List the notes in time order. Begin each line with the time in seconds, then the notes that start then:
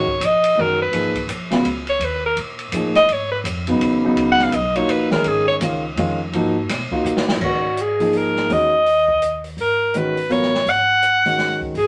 Already playing: G#1 C#5
0.07 kick
0.20 A#1, hi-hat pedal, ride
0.25 D#5
0.44 ride
0.56 F#1 D#3 G#3 C#4 F#4
0.60 A#4
0.82 B4
0.91 G#1 F3 A#3 D#4 G#4, ride
1.15 kick, ride
1.27 A#1, hi-hat pedal, ride
1.51 C#3 F#3 B3 F4, snare, ride
1.63 C#2, ride
1.87 C#5, ride
1.99 D#2, ride
2.05 B4
2.26 A#4
2.36 A#2, ride
2.59 ride
2.72 A2 F3 A#3 D#4 G#4, hi-hat pedal, ride
2.95 D#5, snare, ride
3.08 G#2, ride
3.12 C#5
3.32 B4
3.44 F2, hi-hat pedal, ride
3.67 C#3 F#3 B3 D#4, ride
3.80 D#2, ride
4.02 C#3 F#3 B3 D#4, muted upright bass stroke
4.16 C#2, ride
4.32 F#5
4.39 snare
4.44 F5
4.52 B1 D#5, hi-hat pedal, ride
4.76 A#3 D#4 F4 F#4 C#5, ride
4.88 A#1 B4, ride
5.11 D#3 G#3 C#4 G#4 A#4, snare
5.24 G#1, ride
5.28 G#4
5.48 C#5
5.60 C#2 D#3 G#3 C#4 F4, hi-hat pedal, ride
5.96 F2 D#3 G#3 C#4 F4, ride
6.32 G#2 F3 A#3 D#4 F#4, ride
6.69 B2, snare, hi-hat pedal, ride
6.91 A#3 D#4 F4 F#4, muted upright bass stroke, kick
7.04 A#2, hi-hat pedal
7.17 snare
7.28 snare
7.40 G#2 D#3 G#3 C#4 F#4, kick, crash
7.44 F#4
7.77 closed hi-hat
7.81 G#4
8.00 F3 A#3 D#4 G#4, open hi-hat
8.13 open hi-hat
8.17 A#4
8.36 snare
8.49 D#2 D#3 G#3 C#4 F#4 D#5, open hi-hat
8.86 open hi-hat
9.08 kick
9.22 closed hi-hat
9.44 open hi-hat
9.57 G#1 A#4, open hi-hat
9.94 D#3 G#3 C#4 F#4 B4, closed hi-hat
10.17 open hi-hat
10.29 A1 F#3 B3 F4 A#4 C#5, open hi-hat
10.42 snare
10.55 snare
10.66 G#1 F#5, open hi-hat
11.02 closed hi-hat
11.25 D#3 G#3 C#4 F#4, open hi-hat
11.38 snare, open hi-hat
11.61 kick
11.74 G#1 G#4, open hi-hat